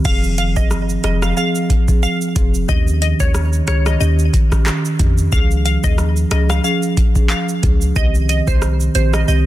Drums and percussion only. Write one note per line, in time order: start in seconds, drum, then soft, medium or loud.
0.05 kick loud
0.05 crash medium
0.05 shaker medium
0.24 shaker medium
0.38 closed hi-hat medium
0.38 shaker medium
0.56 kick loud
0.56 shaker medium
0.71 cross-stick medium
0.71 shaker medium
0.89 shaker soft
1.04 cross-stick loud
1.04 closed hi-hat medium
1.04 shaker soft
1.22 cross-stick loud
1.22 shaker medium
1.37 shaker medium
1.55 shaker medium
1.70 kick medium
1.70 closed hi-hat medium
1.70 shaker soft
1.88 kick loud
1.88 shaker medium
2.03 shaker medium
2.21 shaker medium
2.36 kick loud
2.36 closed hi-hat medium
2.36 shaker soft
2.54 shaker medium
2.69 kick loud
2.69 shaker medium
2.87 shaker medium
3.02 closed hi-hat medium
3.02 shaker medium
3.20 kick medium
3.20 shaker loud
3.34 cross-stick medium
3.34 shaker medium
3.53 shaker medium
3.68 cross-stick loud
3.68 closed hi-hat medium
3.68 shaker medium
3.86 cross-stick loud
3.86 shaker medium
4.01 shaker medium
4.19 shaker medium
4.34 kick medium
4.34 closed hi-hat medium
4.34 shaker soft
4.52 kick loud
4.52 cross-stick medium
4.52 shaker medium
4.66 cross-stick medium
4.66 clap loud
4.66 shaker medium
4.85 shaker medium
4.99 kick loud
4.99 closed hi-hat medium
4.99 shaker soft
5.18 shaker medium
5.32 kick loud
5.32 shaker medium
5.51 shaker medium
5.66 closed hi-hat medium
5.66 shaker medium
5.84 kick loud
5.84 shaker loud
5.98 cross-stick medium
5.98 shaker medium
6.17 shaker medium
6.31 cross-stick loud
6.31 closed hi-hat medium
6.31 shaker medium
6.50 cross-stick medium
6.50 shaker medium
6.64 shaker medium
6.83 shaker medium
6.97 kick medium
6.97 closed hi-hat medium
6.97 shaker soft
7.16 kick loud
7.16 shaker medium
7.30 clap medium
7.30 shaker medium
7.49 shaker medium
7.63 kick loud
7.63 closed hi-hat medium
7.63 shaker soft
7.82 shaker medium
7.96 kick loud
7.96 shaker medium
8.15 shaker medium
8.29 closed hi-hat medium
8.29 shaker medium
8.48 kick loud
8.48 shaker loud
8.62 cross-stick medium
8.62 shaker medium
8.80 shaker medium
8.95 closed hi-hat medium
8.95 shaker medium
9.14 cross-stick medium
9.14 shaker medium
9.28 shaker medium